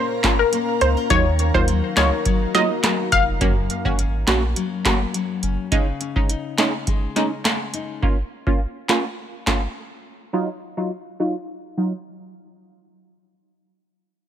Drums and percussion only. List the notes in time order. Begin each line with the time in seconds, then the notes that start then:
0.24 kick, snare, clap, closed hi-hat
0.53 closed hi-hat
0.81 closed hi-hat
1.10 kick, closed hi-hat
1.39 closed hi-hat
1.54 kick
1.68 closed hi-hat
1.97 snare, clap, closed hi-hat
2.25 kick, closed hi-hat
2.55 snare, closed hi-hat
2.84 snare, clap, closed hi-hat
3.12 kick, closed hi-hat
3.41 kick, closed hi-hat
3.70 closed hi-hat
3.85 kick
3.99 closed hi-hat
4.28 snare, clap, closed hi-hat
4.56 closed hi-hat
4.85 kick, snare, clap, closed hi-hat
5.14 closed hi-hat
5.43 closed hi-hat
5.72 kick, closed hi-hat
6.01 closed hi-hat
6.16 kick
6.29 closed hi-hat
6.58 snare, clap, closed hi-hat
6.87 kick, closed hi-hat
7.16 snare, closed hi-hat
7.45 snare, clap, closed hi-hat
7.74 closed hi-hat
8.03 kick
8.47 kick
8.89 snare, clap
9.47 kick, snare, clap